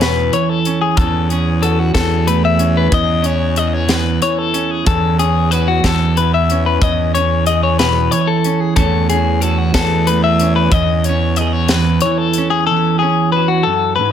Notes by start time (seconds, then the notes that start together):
Already playing: E2 E3 C#4 G#4 B4
0.01 B2 B4, snare, closed hi-hat
0.33 E3 C#5, closed hi-hat
0.49 A4
0.65 C#4, closed hi-hat
0.81 G#4
0.97 E2 A4, kick, closed hi-hat
1.29 C#4 G#4, closed hi-hat
1.62 F#4 A4, closed hi-hat
1.79 F#4
1.94 E2 A4, kick, snare, closed hi-hat
2.27 A3 B4, closed hi-hat
2.45 E5
2.59 C#4, closed hi-hat
2.77 B4
2.91 E2 D#5, kick, closed hi-hat
3.23 C#4 C#5, closed hi-hat
3.56 G#4 D#5, closed hi-hat
3.74 C#5
3.88 E2 B4, snare, closed hi-hat
4.22 E3 C#5, closed hi-hat
4.38 A4
4.54 C#4, closed hi-hat
4.71 G#4
4.85 E2 A4, kick, closed hi-hat
5.19 C#4 G#4, closed hi-hat
5.51 F#4 B4, closed hi-hat
5.68 F#4
5.84 E2 A4, kick, snare, closed hi-hat
6.17 E3 B4, closed hi-hat
6.34 E5
6.50 C#4, closed hi-hat
6.66 B4
6.82 E2 D#5, kick, closed hi-hat
7.14 C#4 C#5, closed hi-hat
7.46 G#4 D#5, closed hi-hat
7.63 C#5
7.79 B2 B4, snare, closed hi-hat
8.11 E3 C#5, closed hi-hat
8.27 A4
8.44 C#4, closed hi-hat
8.60 G#4
8.76 E2 A3 C#4 F#4 A4 C#5, kick, closed hi-hat
9.09 C#4 G#4, closed hi-hat
9.41 F#4 A4, closed hi-hat
9.58 F#4
9.74 E2 A4, kick, snare, closed hi-hat
10.07 A3 B4, closed hi-hat
10.24 E5
10.40 C#4, closed hi-hat
10.56 B4
10.72 E2 D#5, kick, closed hi-hat
11.04 C#5, closed hi-hat
11.09 C#4
11.36 D#5, closed hi-hat
11.41 G#4
11.53 C#5
11.69 B4, snare, closed hi-hat
11.74 E2
12.01 C#5, closed hi-hat
12.06 E3
12.18 A4
12.34 closed hi-hat
12.38 C#4
12.50 G#4
12.67 A4
12.71 E2
12.99 C#4 G#4
13.32 B4
13.36 F#4
13.48 F#4
13.63 F#2 A4
13.96 G#2 B4